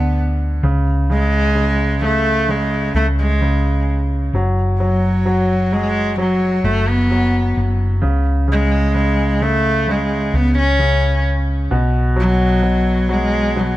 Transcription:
Already playing: fingered electric bass D2, upright piano D3, cello B3
0.63 fingered electric bass C#2, upright piano C#3
1.10 upright piano C#3, cello G#3
1.55 upright piano C#3
2.02 upright piano C#3, cello A3
2.48 upright piano C#3, cello G#3
2.95 fingered electric bass C#2, cello A3
3.19 cello G#3
3.41 upright piano C#3
4.33 fingered electric bass F#1, upright piano F#3
4.80 upright piano F#3, cello F#3
5.26 upright piano F#3
5.72 upright piano F#3, cello G#3
6.18 upright piano F#3, cello F#3
6.64 fingered electric bass F#1, cello A3
6.88 cello B3
7.11 upright piano F#3
7.57 fingered electric bass F#1
8.02 fingered electric bass C#2, upright piano C#3
8.48 upright piano C#3
8.52 cello G#3
8.95 upright piano C#3
9.41 upright piano C#3, cello A3
9.88 upright piano C#3, cello G#3
10.34 fingered electric bass C#2, cello B3
10.58 cello C#4
10.79 upright piano C#3
11.71 fingered electric bass B1, upright piano B2
12.16 upright piano F#3
12.20 cello F#3
12.63 upright piano B2
13.09 upright piano F#3, cello G#3
13.56 upright piano B2, cello F#3

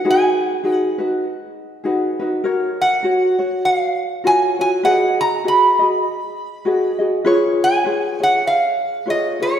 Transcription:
0.05 ukulele D#4 F#4 G#4 B4
0.11 resonator guitar played with a steel bar G#5
0.64 ukulele D#4 F#4 G#4 B4
0.74 resonator guitar played with a steel bar F#5
0.98 ukulele D#4 F#4 B4
1.84 ukulele D#4 F#4 G#4 B4
2.20 ukulele D#4 F#4 B4
2.44 ukulele F#4 A#4 C#5
2.81 resonator guitar played with a steel bar F#5
3.03 ukulele F#4 A#4 C#5
3.39 ukulele F#4 C#5
3.65 resonator guitar played with a steel bar F#5
3.76 resonator guitar played with a steel bar F5
4.24 ukulele F4 F#4 A#4 C#5, resonator guitar played with a steel bar G#5
4.59 ukulele F4 F#4 C#5, resonator guitar played with a steel bar G#5
4.83 ukulele F#4 G#4 B4 D#5, resonator guitar played with a steel bar F#5
5.21 resonator guitar played with a steel bar A#5
5.44 ukulele F#4 G#4 B4 D#5, resonator guitar played with a steel bar B5
5.79 ukulele F#4 G#4 D#5
6.65 ukulele F#4 G#4 B4 D#5
6.99 ukulele F#4 G#4 D#5
7.25 ukulele F4 G#4 B4 C#5
7.64 resonator guitar played with a steel bar G#5
7.84 ukulele F4 G#4 B4 C#5
8.20 ukulele G#4 C#5, resonator guitar played with a steel bar F#5
8.47 resonator guitar played with a steel bar F5
9.06 ukulele F4 G#4 B4 C#5
9.10 resonator guitar played with a steel bar D#5
9.40 ukulele F4 G#4 C#5, resonator guitar played with a steel bar C#5

